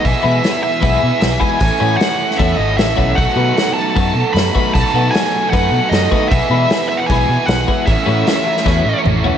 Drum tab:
HH |o---o---o---o---|o---o---o---o---|o---o---o---o---|o---o---o---o---|
SD |----o-------o---|----o--o----o---|----o-------o---|----o-------o---|
T2 |----------------|----------------|----------------|----------------|
FT |----------------|----------------|----------------|----------------|
BD |o-------o-----o-|o-------o-----o-|o-------o-----o-|o-------o-----o-|

HH |o---o---o---o---|o---o-----------|
SD |----o-------o---|----o--oo-------|
T2 |----------------|------------o---|
FT |----------------|--------------o-|
BD |o-------o-----o-|o-------o-------|